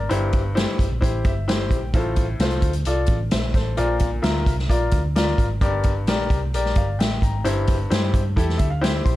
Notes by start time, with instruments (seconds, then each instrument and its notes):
Already playing: upright piano A#4 D5
0.09 picked electric bass G1, upright piano G2 E4 G4 C5, closed hi-hat
0.33 kick, closed hi-hat
0.55 upright piano E4 G4 C5, snare, closed hi-hat
0.79 picked electric bass G1, kick, closed hi-hat
0.91 picked electric bass A#1
1.01 picked electric bass A1, upright piano E4 G4 C5, kick, closed hi-hat
1.24 picked electric bass G1, upright piano E5, kick, closed hi-hat
1.48 upright piano E4 G4 C5 G5, snare, closed hi-hat
1.71 picked electric bass A#1, kick, closed hi-hat
1.94 picked electric bass A1, upright piano A2 F4 A4 C5, kick, closed hi-hat
2.16 kick, closed hi-hat
2.40 picked electric bass C2, upright piano F4 A4 C5, snare, closed hi-hat
2.51 closed hi-hat
2.62 picked electric bass D2, kick, closed hi-hat
2.73 closed hi-hat
2.85 picked electric bass C2, upright piano F4 A4 D5, closed hi-hat
3.06 picked electric bass A1, kick, closed hi-hat
3.31 picked electric bass A#1, upright piano C5 E5, snare, closed hi-hat
3.54 picked electric bass A1, upright piano A4 C5, kick, snare, closed hi-hat
3.77 picked electric bass A#1, upright piano A#2 F4 A#4 D5, closed hi-hat
3.99 kick, closed hi-hat
4.22 picked electric bass D2, upright piano F4 A#4 E5, snare, closed hi-hat
4.46 picked electric bass C2, kick, closed hi-hat
4.59 snare
4.69 picked electric bass A#1, upright piano F4 A#4 D5, kick, closed hi-hat
4.91 picked electric bass D2, kick, closed hi-hat
5.16 upright piano F4 A#4 D5, snare, closed hi-hat
5.38 picked electric bass G#1, kick, closed hi-hat
5.61 picked electric bass G1, upright piano G2 G4 A#4 D5, kick, closed hi-hat
5.84 kick, closed hi-hat
6.07 picked electric bass A#1, upright piano G4 A#4 D5, snare, closed hi-hat
6.30 picked electric bass C2, kick, closed hi-hat
6.53 picked electric bass A#1, upright piano G4 A#4 D5, closed hi-hat
6.66 snare
6.75 picked electric bass G1, upright piano D5 F5, kick, closed hi-hat
6.99 picked electric bass A1, upright piano E5 G5, snare, closed hi-hat
7.22 picked electric bass G#1, upright piano G5 A#5, kick, closed hi-hat
7.44 picked electric bass G1, upright piano G2 E4 G4 C5, closed hi-hat
7.67 kick, closed hi-hat
7.90 picked electric bass G2, upright piano E4 G4 C5, snare, closed hi-hat
8.14 picked electric bass G2, kick, closed hi-hat
8.36 picked electric bass E2, upright piano E4 G4 A4, kick, closed hi-hat
8.49 snare
8.58 picked electric bass D2, upright piano E5, kick, closed hi-hat
8.70 upright piano F5
8.81 upright piano E4 G4 C5 G5, snare, closed hi-hat
9.04 picked electric bass A#1, upright piano C6, kick, closed hi-hat